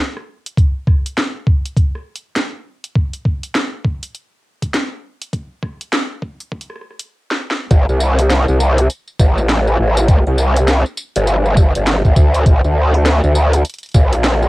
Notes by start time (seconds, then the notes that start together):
0.17 cross-stick
0.46 closed hi-hat
0.57 kick, closed hi-hat
0.87 kick, cross-stick
1.06 closed hi-hat
1.18 snare, closed hi-hat
1.47 kick
1.66 closed hi-hat
1.77 kick, closed hi-hat
1.95 cross-stick
2.16 closed hi-hat
2.36 snare, closed hi-hat
2.84 closed hi-hat
2.96 kick
3.13 closed hi-hat
3.25 kick
3.43 closed hi-hat
3.55 snare, closed hi-hat
3.85 kick
4.03 closed hi-hat
4.15 closed hi-hat
4.62 kick, closed hi-hat
4.74 snare, closed hi-hat
5.22 closed hi-hat
5.33 kick, closed hi-hat
5.63 kick, cross-stick
5.81 closed hi-hat
5.93 snare, closed hi-hat
6.22 kick
6.40 closed hi-hat
6.52 kick
6.61 closed hi-hat
6.70 cross-stick
6.76 cross-stick
6.81 cross-stick
6.91 cross-stick
6.99 closed hi-hat
7.31 snare
7.51 snare
7.71 A1, kick, closed hi-hat, tambourine
7.89 C2, tambourine
8.00 tambourine
8.19 closed hi-hat, tambourine
8.30 snare, closed hi-hat, tambourine
8.48 C2, tambourine
8.60 tambourine
8.78 closed hi-hat, tambourine
8.90 closed hi-hat, tambourine
9.07 tambourine
9.19 A1, kick, tambourine
9.38 tambourine
9.49 snare, closed hi-hat, tambourine
9.67 cross-stick, tambourine
9.70 cross-stick
9.73 cross-stick
9.76 cross-stick
9.79 A1, cross-stick
9.83 cross-stick
9.88 cross-stick
9.92 cross-stick
9.97 closed hi-hat, tambourine
10.08 kick, closed hi-hat, tambourine
10.27 C2, tambourine
10.38 cross-stick, tambourine
10.56 closed hi-hat, tambourine
10.68 snare, closed hi-hat, tambourine
10.86 tambourine
10.97 tambourine
11.16 G1, closed hi-hat, tambourine
11.27 closed hi-hat, tambourine
11.46 cross-stick, tambourine
11.57 kick, tambourine
11.75 G1, closed hi-hat, tambourine
11.87 snare, closed hi-hat, tambourine
12.05 A1, kick, tambourine
12.16 D2, kick, tambourine
12.34 closed hi-hat, tambourine
12.46 A#1, kick, closed hi-hat, tambourine
12.64 D2, tambourine
12.94 tambourine
13.06 snare, closed hi-hat, tambourine
13.24 D2, tambourine
13.35 tambourine
13.53 closed hi-hat, tambourine
13.65 closed hi-hat, tambourine
13.70 closed hi-hat
13.74 closed hi-hat
13.78 closed hi-hat
13.83 closed hi-hat, tambourine
13.86 closed hi-hat
13.89 closed hi-hat
13.92 A#1, kick, closed hi-hat, tambourine
14.13 closed hi-hat, tambourine
14.24 snare, closed hi-hat, tambourine
14.43 cross-stick, tambourine